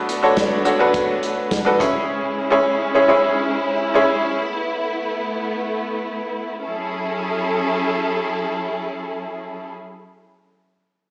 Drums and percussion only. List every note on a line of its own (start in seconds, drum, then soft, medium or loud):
0.09 closed hi-hat medium
0.37 kick medium
0.37 snare medium
0.37 closed hi-hat medium
0.65 closed hi-hat medium
0.94 kick medium
0.94 closed hi-hat medium
1.23 closed hi-hat medium
1.51 kick medium
1.51 snare medium
1.51 closed hi-hat medium
1.80 kick medium
1.80 closed hi-hat medium